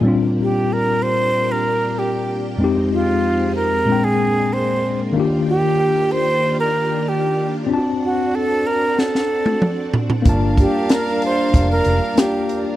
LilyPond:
<<
  \new Staff \with { instrumentName = "Violin section" } { \time 4/4 \key bes \major \tempo 4 = 94 r1 | r1 | r1 | r1 |
<d' bes' f''>1 | }
  \new Staff \with { instrumentName = "Flute" } { \time 4/4 \key bes \major r8 g'8 bes'8 c''8. bes'8. g'8. r16 | r8 f'4 bes'8. aes'8. c''8. r16 | r8 g'4 c''8. bes'8. g'8. r16 | r8 fis'8 a'8 bes'8 a'4. r8 |
r8 g'8 bes'8 c''8. bes'8. g'8. r16 | }
  \new Staff \with { instrumentName = "Tine electric piano" } { \time 4/4 \key bes \major <bes, g c' d' f'>1 | <f, aes c' ees' g'>2 <bes, aes c' d' g''>2 | <ees bes d' f' g'>1 | <c' d' f' fis' a''>1 |
<bes d' f' a''>2. <bes d' f' g'>4 | }
  \new Staff \with { instrumentName = "String machine" } { \time 4/4 \key bes \major <bes d' g'>1 | <f aes c' ees'>2 <aes bes d'>2 | <ees f' g'>1 | <c' fis'>1 |
<g bes' a''>1 | }
  \new Staff \with { instrumentName = "Fingered electric bass" } { \clef bass \time 4/4 \key bes \major r1 | r1 | r1 | r1 |
g,,8. r4 r16 f,,8 f,,16 r4 r16 | }
  \new DrumStaff \with { instrumentName = "Drums" } \drummode { \time 4/4 r4 r4 r4 r4 | r4 r4 r4 r4 | r4 r4 r4 r4 | r4 r4 sn16 sn8 tommh16 toml8 tomfh16 tomfh16 |
<hh bd>8 <hh bd>8 <hh sn>16 sn16 hh8 <hh bd>8 hh8 <hh sn>8 hh8 | }
>>